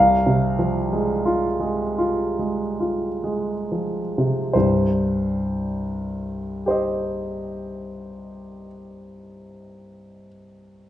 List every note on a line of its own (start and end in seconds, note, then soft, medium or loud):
0.00 4.49 C2 soft
0.00 1.97 F5 medium
0.26 0.78 C3 soft
0.59 1.11 F3 soft
0.93 1.46 G#3 soft
1.25 1.82 F4 soft
1.60 2.20 G#3 soft
1.98 2.62 F4 soft
2.39 3.06 G#3 soft
2.80 3.52 F4 soft
3.24 3.99 G#3 soft
3.72 4.40 F3 soft
4.18 4.55 C3 soft
4.53 8.66 C2 soft
4.53 8.66 G2 soft
4.53 6.66 C5 soft
6.66 10.26 G4 soft
6.66 10.27 C5 soft
6.70 10.28 D#5 soft